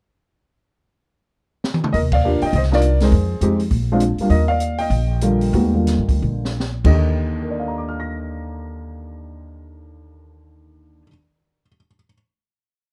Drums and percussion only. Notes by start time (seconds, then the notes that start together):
1.64 snare
1.74 high tom
1.84 mid tom
1.94 kick, open hi-hat
2.12 kick, ride
2.41 open hi-hat
2.53 kick, open hi-hat
2.63 snare
2.73 snare
2.81 closed hi-hat
3.00 snare, open hi-hat
3.11 kick, open hi-hat
3.41 closed hi-hat
3.59 open hi-hat
3.71 kick, open hi-hat
4.00 closed hi-hat
4.18 open hi-hat
4.30 kick, open hi-hat
4.60 closed hi-hat
4.78 open hi-hat
4.90 kick, open hi-hat
5.21 closed hi-hat
5.41 open hi-hat
5.53 kick, open hi-hat
5.87 snare, closed hi-hat
6.09 kick, open hi-hat
6.45 snare
6.60 snare
6.84 kick, crash